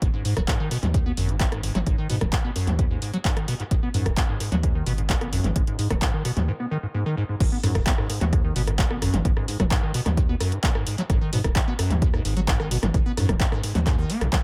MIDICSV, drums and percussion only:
0, 0, Header, 1, 2, 480
1, 0, Start_track
1, 0, Key_signature, 5, "minor"
1, 0, Tempo, 461538
1, 21, Time_signature, 4, 2, 24, 8
1, 15011, End_track
2, 0, Start_track
2, 0, Title_t, "Drums"
2, 20, Note_on_c, 9, 36, 113
2, 20, Note_on_c, 9, 42, 80
2, 124, Note_off_c, 9, 36, 0
2, 124, Note_off_c, 9, 42, 0
2, 260, Note_on_c, 9, 46, 107
2, 364, Note_off_c, 9, 46, 0
2, 381, Note_on_c, 9, 36, 58
2, 381, Note_on_c, 9, 37, 81
2, 381, Note_on_c, 9, 42, 52
2, 485, Note_off_c, 9, 36, 0
2, 485, Note_off_c, 9, 37, 0
2, 485, Note_off_c, 9, 42, 0
2, 500, Note_on_c, 9, 36, 112
2, 500, Note_on_c, 9, 42, 67
2, 501, Note_on_c, 9, 39, 107
2, 604, Note_off_c, 9, 36, 0
2, 604, Note_off_c, 9, 42, 0
2, 605, Note_off_c, 9, 39, 0
2, 740, Note_on_c, 9, 46, 105
2, 844, Note_off_c, 9, 46, 0
2, 861, Note_on_c, 9, 42, 52
2, 861, Note_on_c, 9, 47, 96
2, 965, Note_off_c, 9, 42, 0
2, 965, Note_off_c, 9, 47, 0
2, 980, Note_on_c, 9, 36, 115
2, 980, Note_on_c, 9, 42, 69
2, 1084, Note_off_c, 9, 36, 0
2, 1084, Note_off_c, 9, 42, 0
2, 1220, Note_on_c, 9, 46, 104
2, 1324, Note_off_c, 9, 46, 0
2, 1341, Note_on_c, 9, 42, 50
2, 1445, Note_off_c, 9, 42, 0
2, 1459, Note_on_c, 9, 42, 74
2, 1460, Note_on_c, 9, 36, 120
2, 1461, Note_on_c, 9, 39, 112
2, 1563, Note_off_c, 9, 42, 0
2, 1564, Note_off_c, 9, 36, 0
2, 1565, Note_off_c, 9, 39, 0
2, 1580, Note_on_c, 9, 37, 72
2, 1580, Note_on_c, 9, 42, 36
2, 1684, Note_off_c, 9, 37, 0
2, 1684, Note_off_c, 9, 42, 0
2, 1700, Note_on_c, 9, 46, 108
2, 1804, Note_off_c, 9, 46, 0
2, 1820, Note_on_c, 9, 42, 50
2, 1820, Note_on_c, 9, 47, 94
2, 1924, Note_off_c, 9, 42, 0
2, 1924, Note_off_c, 9, 47, 0
2, 1939, Note_on_c, 9, 42, 78
2, 1940, Note_on_c, 9, 36, 117
2, 2043, Note_off_c, 9, 42, 0
2, 2044, Note_off_c, 9, 36, 0
2, 2179, Note_on_c, 9, 46, 95
2, 2283, Note_off_c, 9, 46, 0
2, 2301, Note_on_c, 9, 36, 59
2, 2301, Note_on_c, 9, 37, 81
2, 2301, Note_on_c, 9, 42, 51
2, 2301, Note_on_c, 9, 47, 79
2, 2405, Note_off_c, 9, 36, 0
2, 2405, Note_off_c, 9, 37, 0
2, 2405, Note_off_c, 9, 42, 0
2, 2405, Note_off_c, 9, 47, 0
2, 2419, Note_on_c, 9, 42, 78
2, 2420, Note_on_c, 9, 36, 114
2, 2421, Note_on_c, 9, 39, 113
2, 2523, Note_off_c, 9, 42, 0
2, 2524, Note_off_c, 9, 36, 0
2, 2525, Note_off_c, 9, 39, 0
2, 2659, Note_on_c, 9, 46, 102
2, 2763, Note_off_c, 9, 46, 0
2, 2781, Note_on_c, 9, 42, 54
2, 2781, Note_on_c, 9, 47, 88
2, 2885, Note_off_c, 9, 42, 0
2, 2885, Note_off_c, 9, 47, 0
2, 2900, Note_on_c, 9, 36, 118
2, 2900, Note_on_c, 9, 42, 72
2, 3004, Note_off_c, 9, 36, 0
2, 3004, Note_off_c, 9, 42, 0
2, 3140, Note_on_c, 9, 46, 99
2, 3244, Note_off_c, 9, 46, 0
2, 3261, Note_on_c, 9, 42, 51
2, 3365, Note_off_c, 9, 42, 0
2, 3380, Note_on_c, 9, 36, 120
2, 3380, Note_on_c, 9, 42, 73
2, 3381, Note_on_c, 9, 39, 110
2, 3484, Note_off_c, 9, 36, 0
2, 3484, Note_off_c, 9, 42, 0
2, 3485, Note_off_c, 9, 39, 0
2, 3501, Note_on_c, 9, 37, 68
2, 3501, Note_on_c, 9, 42, 38
2, 3605, Note_off_c, 9, 37, 0
2, 3605, Note_off_c, 9, 42, 0
2, 3620, Note_on_c, 9, 46, 107
2, 3724, Note_off_c, 9, 46, 0
2, 3741, Note_on_c, 9, 42, 52
2, 3845, Note_off_c, 9, 42, 0
2, 3860, Note_on_c, 9, 36, 107
2, 3860, Note_on_c, 9, 42, 82
2, 3964, Note_off_c, 9, 36, 0
2, 3964, Note_off_c, 9, 42, 0
2, 4100, Note_on_c, 9, 46, 95
2, 4204, Note_off_c, 9, 46, 0
2, 4221, Note_on_c, 9, 36, 62
2, 4221, Note_on_c, 9, 37, 81
2, 4221, Note_on_c, 9, 42, 57
2, 4325, Note_off_c, 9, 36, 0
2, 4325, Note_off_c, 9, 37, 0
2, 4325, Note_off_c, 9, 42, 0
2, 4340, Note_on_c, 9, 36, 110
2, 4340, Note_on_c, 9, 42, 79
2, 4341, Note_on_c, 9, 39, 105
2, 4444, Note_off_c, 9, 36, 0
2, 4444, Note_off_c, 9, 42, 0
2, 4445, Note_off_c, 9, 39, 0
2, 4580, Note_on_c, 9, 46, 101
2, 4684, Note_off_c, 9, 46, 0
2, 4701, Note_on_c, 9, 42, 54
2, 4701, Note_on_c, 9, 47, 90
2, 4805, Note_off_c, 9, 42, 0
2, 4805, Note_off_c, 9, 47, 0
2, 4819, Note_on_c, 9, 42, 77
2, 4820, Note_on_c, 9, 36, 112
2, 4923, Note_off_c, 9, 42, 0
2, 4924, Note_off_c, 9, 36, 0
2, 5059, Note_on_c, 9, 46, 99
2, 5163, Note_off_c, 9, 46, 0
2, 5180, Note_on_c, 9, 42, 52
2, 5284, Note_off_c, 9, 42, 0
2, 5300, Note_on_c, 9, 36, 110
2, 5300, Note_on_c, 9, 42, 77
2, 5301, Note_on_c, 9, 39, 109
2, 5404, Note_off_c, 9, 36, 0
2, 5404, Note_off_c, 9, 42, 0
2, 5405, Note_off_c, 9, 39, 0
2, 5421, Note_on_c, 9, 37, 67
2, 5421, Note_on_c, 9, 42, 40
2, 5525, Note_off_c, 9, 37, 0
2, 5525, Note_off_c, 9, 42, 0
2, 5540, Note_on_c, 9, 46, 105
2, 5644, Note_off_c, 9, 46, 0
2, 5661, Note_on_c, 9, 42, 57
2, 5661, Note_on_c, 9, 47, 87
2, 5765, Note_off_c, 9, 42, 0
2, 5765, Note_off_c, 9, 47, 0
2, 5780, Note_on_c, 9, 36, 114
2, 5780, Note_on_c, 9, 42, 85
2, 5884, Note_off_c, 9, 36, 0
2, 5884, Note_off_c, 9, 42, 0
2, 5901, Note_on_c, 9, 42, 38
2, 6005, Note_off_c, 9, 42, 0
2, 6020, Note_on_c, 9, 46, 104
2, 6124, Note_off_c, 9, 46, 0
2, 6141, Note_on_c, 9, 36, 63
2, 6141, Note_on_c, 9, 37, 79
2, 6141, Note_on_c, 9, 42, 57
2, 6141, Note_on_c, 9, 47, 80
2, 6245, Note_off_c, 9, 36, 0
2, 6245, Note_off_c, 9, 37, 0
2, 6245, Note_off_c, 9, 42, 0
2, 6245, Note_off_c, 9, 47, 0
2, 6260, Note_on_c, 9, 36, 112
2, 6260, Note_on_c, 9, 42, 74
2, 6261, Note_on_c, 9, 39, 118
2, 6364, Note_off_c, 9, 36, 0
2, 6364, Note_off_c, 9, 42, 0
2, 6365, Note_off_c, 9, 39, 0
2, 6500, Note_on_c, 9, 46, 101
2, 6604, Note_off_c, 9, 46, 0
2, 6621, Note_on_c, 9, 42, 56
2, 6621, Note_on_c, 9, 47, 88
2, 6725, Note_off_c, 9, 42, 0
2, 6725, Note_off_c, 9, 47, 0
2, 7700, Note_on_c, 9, 36, 117
2, 7701, Note_on_c, 9, 42, 70
2, 7701, Note_on_c, 9, 49, 110
2, 7804, Note_off_c, 9, 36, 0
2, 7805, Note_off_c, 9, 42, 0
2, 7805, Note_off_c, 9, 49, 0
2, 7940, Note_on_c, 9, 37, 55
2, 7940, Note_on_c, 9, 46, 106
2, 8044, Note_off_c, 9, 37, 0
2, 8044, Note_off_c, 9, 46, 0
2, 8061, Note_on_c, 9, 36, 62
2, 8061, Note_on_c, 9, 37, 80
2, 8061, Note_on_c, 9, 42, 54
2, 8165, Note_off_c, 9, 36, 0
2, 8165, Note_off_c, 9, 37, 0
2, 8165, Note_off_c, 9, 42, 0
2, 8180, Note_on_c, 9, 36, 119
2, 8180, Note_on_c, 9, 42, 69
2, 8181, Note_on_c, 9, 39, 121
2, 8284, Note_off_c, 9, 36, 0
2, 8284, Note_off_c, 9, 42, 0
2, 8285, Note_off_c, 9, 39, 0
2, 8302, Note_on_c, 9, 37, 59
2, 8406, Note_off_c, 9, 37, 0
2, 8420, Note_on_c, 9, 46, 107
2, 8524, Note_off_c, 9, 46, 0
2, 8541, Note_on_c, 9, 42, 53
2, 8541, Note_on_c, 9, 47, 96
2, 8645, Note_off_c, 9, 42, 0
2, 8645, Note_off_c, 9, 47, 0
2, 8660, Note_on_c, 9, 36, 126
2, 8661, Note_on_c, 9, 37, 55
2, 8661, Note_on_c, 9, 42, 69
2, 8764, Note_off_c, 9, 36, 0
2, 8765, Note_off_c, 9, 37, 0
2, 8765, Note_off_c, 9, 42, 0
2, 8901, Note_on_c, 9, 46, 102
2, 9005, Note_off_c, 9, 46, 0
2, 9021, Note_on_c, 9, 37, 56
2, 9021, Note_on_c, 9, 42, 60
2, 9125, Note_off_c, 9, 37, 0
2, 9125, Note_off_c, 9, 42, 0
2, 9140, Note_on_c, 9, 36, 127
2, 9141, Note_on_c, 9, 42, 67
2, 9142, Note_on_c, 9, 39, 117
2, 9244, Note_off_c, 9, 36, 0
2, 9245, Note_off_c, 9, 42, 0
2, 9246, Note_off_c, 9, 39, 0
2, 9262, Note_on_c, 9, 37, 66
2, 9366, Note_off_c, 9, 37, 0
2, 9381, Note_on_c, 9, 37, 61
2, 9381, Note_on_c, 9, 46, 105
2, 9485, Note_off_c, 9, 37, 0
2, 9485, Note_off_c, 9, 46, 0
2, 9502, Note_on_c, 9, 42, 66
2, 9502, Note_on_c, 9, 47, 102
2, 9606, Note_off_c, 9, 42, 0
2, 9606, Note_off_c, 9, 47, 0
2, 9620, Note_on_c, 9, 36, 127
2, 9621, Note_on_c, 9, 42, 69
2, 9724, Note_off_c, 9, 36, 0
2, 9725, Note_off_c, 9, 42, 0
2, 9742, Note_on_c, 9, 37, 57
2, 9846, Note_off_c, 9, 37, 0
2, 9861, Note_on_c, 9, 46, 107
2, 9965, Note_off_c, 9, 46, 0
2, 9981, Note_on_c, 9, 36, 66
2, 9982, Note_on_c, 9, 37, 75
2, 9982, Note_on_c, 9, 42, 52
2, 9982, Note_on_c, 9, 47, 85
2, 10085, Note_off_c, 9, 36, 0
2, 10086, Note_off_c, 9, 37, 0
2, 10086, Note_off_c, 9, 42, 0
2, 10086, Note_off_c, 9, 47, 0
2, 10100, Note_on_c, 9, 36, 124
2, 10100, Note_on_c, 9, 37, 60
2, 10100, Note_on_c, 9, 42, 63
2, 10102, Note_on_c, 9, 39, 123
2, 10204, Note_off_c, 9, 36, 0
2, 10204, Note_off_c, 9, 37, 0
2, 10204, Note_off_c, 9, 42, 0
2, 10206, Note_off_c, 9, 39, 0
2, 10341, Note_on_c, 9, 46, 114
2, 10445, Note_off_c, 9, 46, 0
2, 10462, Note_on_c, 9, 37, 58
2, 10462, Note_on_c, 9, 42, 58
2, 10462, Note_on_c, 9, 47, 92
2, 10566, Note_off_c, 9, 37, 0
2, 10566, Note_off_c, 9, 42, 0
2, 10566, Note_off_c, 9, 47, 0
2, 10580, Note_on_c, 9, 36, 122
2, 10581, Note_on_c, 9, 42, 62
2, 10684, Note_off_c, 9, 36, 0
2, 10685, Note_off_c, 9, 42, 0
2, 10821, Note_on_c, 9, 37, 61
2, 10821, Note_on_c, 9, 46, 108
2, 10925, Note_off_c, 9, 37, 0
2, 10925, Note_off_c, 9, 46, 0
2, 10942, Note_on_c, 9, 42, 56
2, 11046, Note_off_c, 9, 42, 0
2, 11060, Note_on_c, 9, 36, 124
2, 11061, Note_on_c, 9, 42, 64
2, 11062, Note_on_c, 9, 39, 120
2, 11164, Note_off_c, 9, 36, 0
2, 11165, Note_off_c, 9, 42, 0
2, 11166, Note_off_c, 9, 39, 0
2, 11182, Note_on_c, 9, 37, 65
2, 11286, Note_off_c, 9, 37, 0
2, 11301, Note_on_c, 9, 46, 115
2, 11405, Note_off_c, 9, 46, 0
2, 11421, Note_on_c, 9, 42, 65
2, 11525, Note_off_c, 9, 42, 0
2, 11540, Note_on_c, 9, 36, 127
2, 11541, Note_on_c, 9, 37, 62
2, 11541, Note_on_c, 9, 42, 67
2, 11644, Note_off_c, 9, 36, 0
2, 11645, Note_off_c, 9, 37, 0
2, 11645, Note_off_c, 9, 42, 0
2, 11780, Note_on_c, 9, 46, 115
2, 11884, Note_off_c, 9, 46, 0
2, 11901, Note_on_c, 9, 36, 68
2, 11901, Note_on_c, 9, 37, 76
2, 11901, Note_on_c, 9, 42, 50
2, 12005, Note_off_c, 9, 36, 0
2, 12005, Note_off_c, 9, 37, 0
2, 12005, Note_off_c, 9, 42, 0
2, 12020, Note_on_c, 9, 36, 126
2, 12021, Note_on_c, 9, 42, 60
2, 12022, Note_on_c, 9, 39, 119
2, 12124, Note_off_c, 9, 36, 0
2, 12125, Note_off_c, 9, 42, 0
2, 12126, Note_off_c, 9, 39, 0
2, 12260, Note_on_c, 9, 37, 66
2, 12260, Note_on_c, 9, 46, 121
2, 12364, Note_off_c, 9, 37, 0
2, 12364, Note_off_c, 9, 46, 0
2, 12381, Note_on_c, 9, 42, 52
2, 12381, Note_on_c, 9, 47, 99
2, 12485, Note_off_c, 9, 42, 0
2, 12485, Note_off_c, 9, 47, 0
2, 12500, Note_on_c, 9, 36, 127
2, 12501, Note_on_c, 9, 42, 65
2, 12604, Note_off_c, 9, 36, 0
2, 12605, Note_off_c, 9, 42, 0
2, 12622, Note_on_c, 9, 37, 62
2, 12726, Note_off_c, 9, 37, 0
2, 12740, Note_on_c, 9, 46, 114
2, 12844, Note_off_c, 9, 46, 0
2, 12861, Note_on_c, 9, 42, 55
2, 12965, Note_off_c, 9, 42, 0
2, 12980, Note_on_c, 9, 36, 127
2, 12980, Note_on_c, 9, 37, 56
2, 12980, Note_on_c, 9, 42, 61
2, 12982, Note_on_c, 9, 39, 124
2, 13084, Note_off_c, 9, 36, 0
2, 13084, Note_off_c, 9, 37, 0
2, 13084, Note_off_c, 9, 42, 0
2, 13086, Note_off_c, 9, 39, 0
2, 13101, Note_on_c, 9, 37, 66
2, 13205, Note_off_c, 9, 37, 0
2, 13221, Note_on_c, 9, 46, 120
2, 13325, Note_off_c, 9, 46, 0
2, 13342, Note_on_c, 9, 37, 64
2, 13342, Note_on_c, 9, 42, 63
2, 13342, Note_on_c, 9, 47, 99
2, 13446, Note_off_c, 9, 37, 0
2, 13446, Note_off_c, 9, 42, 0
2, 13446, Note_off_c, 9, 47, 0
2, 13460, Note_on_c, 9, 36, 124
2, 13461, Note_on_c, 9, 42, 66
2, 13564, Note_off_c, 9, 36, 0
2, 13565, Note_off_c, 9, 42, 0
2, 13701, Note_on_c, 9, 37, 62
2, 13701, Note_on_c, 9, 46, 108
2, 13805, Note_off_c, 9, 37, 0
2, 13805, Note_off_c, 9, 46, 0
2, 13821, Note_on_c, 9, 36, 64
2, 13822, Note_on_c, 9, 37, 82
2, 13822, Note_on_c, 9, 42, 50
2, 13822, Note_on_c, 9, 47, 86
2, 13925, Note_off_c, 9, 36, 0
2, 13926, Note_off_c, 9, 37, 0
2, 13926, Note_off_c, 9, 42, 0
2, 13926, Note_off_c, 9, 47, 0
2, 13940, Note_on_c, 9, 36, 120
2, 13941, Note_on_c, 9, 42, 62
2, 13942, Note_on_c, 9, 39, 106
2, 14044, Note_off_c, 9, 36, 0
2, 14045, Note_off_c, 9, 42, 0
2, 14046, Note_off_c, 9, 39, 0
2, 14061, Note_on_c, 9, 37, 66
2, 14165, Note_off_c, 9, 37, 0
2, 14180, Note_on_c, 9, 46, 115
2, 14284, Note_off_c, 9, 46, 0
2, 14301, Note_on_c, 9, 42, 51
2, 14301, Note_on_c, 9, 47, 100
2, 14405, Note_off_c, 9, 42, 0
2, 14405, Note_off_c, 9, 47, 0
2, 14420, Note_on_c, 9, 36, 127
2, 14420, Note_on_c, 9, 37, 60
2, 14420, Note_on_c, 9, 42, 64
2, 14422, Note_on_c, 9, 39, 57
2, 14524, Note_off_c, 9, 36, 0
2, 14524, Note_off_c, 9, 37, 0
2, 14524, Note_off_c, 9, 42, 0
2, 14526, Note_off_c, 9, 39, 0
2, 14660, Note_on_c, 9, 46, 107
2, 14764, Note_off_c, 9, 46, 0
2, 14782, Note_on_c, 9, 37, 67
2, 14782, Note_on_c, 9, 42, 50
2, 14886, Note_off_c, 9, 37, 0
2, 14886, Note_off_c, 9, 42, 0
2, 14900, Note_on_c, 9, 36, 127
2, 14901, Note_on_c, 9, 42, 58
2, 14902, Note_on_c, 9, 39, 115
2, 15004, Note_off_c, 9, 36, 0
2, 15005, Note_off_c, 9, 42, 0
2, 15006, Note_off_c, 9, 39, 0
2, 15011, End_track
0, 0, End_of_file